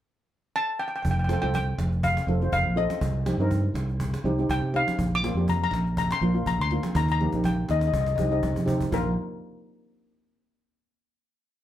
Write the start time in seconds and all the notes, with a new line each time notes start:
0.56 A5
0.80 G5
0.88 G5
0.96 G5
1.02 F1 G5, cajon bass, low conga
1.11 G5
1.19 G5
1.24 C4 G5
1.29 F4 A4, cajon slap, high conga
1.33 G5
1.42 C2 C4 F4 A4 G5, cajon slap
1.54 G5, cajon bass, high conga
1.78 F1, cajon slap, low conga
1.92 cajon slap
2.03 F5, cajon bass
2.17 cajon slap
2.27 F1 C4 F4 A4, cajon slap, high conga
2.41 C4 F4 C5, cajon slap
2.52 F1 F5, cajon bass
2.66 A#1
2.76 C4 F4 A4 D#5, cajon slap, low conga
2.90 cajon slap, high conga
3.01 C2, cajon bass, low conga
3.26 C4 D#4 G4, cajon slap, high conga
3.37 G2 C4 D#4 A#4, cajon slap
3.51 cajon bass, high conga
3.74 C2, cajon slap, low conga
3.89 cajon slap
4.00 cajon bass
4.14 cajon slap
4.24 C2 C4 D#4 G4, cajon slap, high conga
4.38 C4 D#4 G4, cajon slap
4.49 C2 G5, cajon bass
4.61 C3
4.74 C4 D#4 G4 F5, cajon slap, low conga
4.87 cajon slap, high conga
4.99 A#1, cajon bass, low conga
5.15 D6
5.22 A#3 D4 F4, cajon slap, high conga
5.34 F2 A#3 D4 G4, cajon slap
5.48 A#5, cajon bass, high conga
5.64 A#5
5.71 A#1, cajon slap, low conga
5.86 cajon slap
5.97 A#5, cajon bass
6.11 C6, cajon slap
6.21 A#1 A#3 D4 F4, cajon slap, high conga
6.34 A#3 D4 F4, cajon slap
6.46 A#1 A#5, cajon bass
6.58 D2 C6
6.71 A#3 D4 F4, cajon slap, low conga
6.83 cajon slap, high conga
6.95 D#2 A#5, cajon bass, cajon slap, low conga
7.08 A#5, cajon slap
7.20 A#3 D#4 G4, cajon slap, high conga, low conga
7.32 A#1 A#3 D#4 G4, cajon slap
7.44 G5, cajon bass, cajon slap, high conga
7.69 D#2 D#5, cajon slap, low conga
7.80 D#5, cajon slap
7.87 D#5
7.93 C2 D#5, cajon bass
8.01 D#5
8.06 D#5, cajon slap
8.16 C4 D#4 G4 D#5, cajon bass, high conga
8.20 C2
8.24 D#5
8.30 C4 D#4 G4 D#5, cajon slap
8.43 C2, cajon bass, high conga
8.56 C3, cajon bass, high conga
8.66 C4 D#4 G4, cajon bass, low conga
8.80 cajon bass, low conga
8.92 A#1 A#3 D4 F4 A#4, cajon bass, high conga